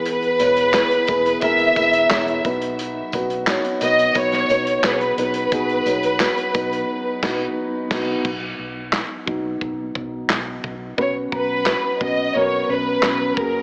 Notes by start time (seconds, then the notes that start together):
Already playing: E1 E3 B3 E4 G#4 B4
0.06 B4, closed hi-hat
0.22 closed hi-hat
0.39 E1 B3 E4 G#4 C#5, closed hi-hat, tambourine
0.57 closed hi-hat
0.73 B3 E4 G#4 B4, snare, clap, closed hi-hat, tambourine
0.91 closed hi-hat
1.07 E1 B3 E4 G#4 B4, kick, closed hi-hat, tambourine
1.26 closed hi-hat
1.41 E1 B3 E4 G#4 A#4 E5, kick, closed hi-hat, tambourine
1.59 closed hi-hat
1.76 E1 B3 E4 G#4 B4, kick, closed hi-hat, tambourine
1.93 closed hi-hat
2.10 E1 B3 E4 G#4 C#5, snare, clap, closed hi-hat, tambourine
2.28 closed hi-hat
2.45 B1 B2 F#3 B3 D#4 F#4 B4, kick, closed hi-hat, tambourine
2.62 closed hi-hat
2.79 closed hi-hat, tambourine
3.12 B1 B3 D#4 F#4 B4, kick, closed hi-hat, tambourine
3.30 closed hi-hat
3.46 B3 D#4 F#4 C#5, snare, clap, closed hi-hat, tambourine
3.65 closed hi-hat
3.81 B1 B3 D#4 F#4 B4 D#5, closed hi-hat, tambourine
3.99 closed hi-hat
4.14 B1 B3 D#4 F#4 B4 C#5, kick, closed hi-hat, tambourine
4.32 snare, closed hi-hat
4.49 B1 B3 D#4 F#4 B4, closed hi-hat, tambourine
4.67 closed hi-hat
4.83 B1 B3 D#4 F#4 G#4 B4, snare, clap, closed hi-hat, tambourine
4.92 C#5
4.98 B4, closed hi-hat
5.18 B1 B2 B3 D#4 F#4 B4, closed hi-hat
5.34 closed hi-hat
5.52 B1 B3 D#4 F#4 G#4, kick, closed hi-hat, tambourine
5.69 closed hi-hat
5.86 B1 B3 D#4 F#4 C#5, closed hi-hat, tambourine
6.03 closed hi-hat
6.20 B3 D#4 F#4 B4, snare, clap, closed hi-hat, tambourine
6.37 closed hi-hat
6.54 B1 B3 D#4 F#4 B4, kick, closed hi-hat, tambourine
6.73 closed hi-hat
7.23 B1 B3 D#4 F#4 B4, kick, snare, crash
7.91 B1 B3 D#4 F#4, kick, snare, crash
8.25 B1 F#3 B3 D#4, kick, crash
8.59 B1
8.93 snare, clap
9.26 B1 F#3 B3 D#4, kick
9.61 B1, kick
9.95 B1, kick
10.30 B1, snare, clap
10.64 B1, kick
10.98 B1 B2 F#3 B3 C#4 F#4 B4 C#5, kick
11.31 B1 B3 C#4 F#4 B4 A#5, kick
11.65 B3 C#4 F#4 B4, snare, clap
12.00 B1 B3 C#4 F#4 B4 D#5, kick
12.35 B1 B3 C#4 F#4 A#4 C#5
12.69 B1 B3 C#4 F#4 B4
13.03 B1 B3 C#4 F#4, snare, clap
13.37 F#1 A#3 C#4 F#4 G#4 A#4, kick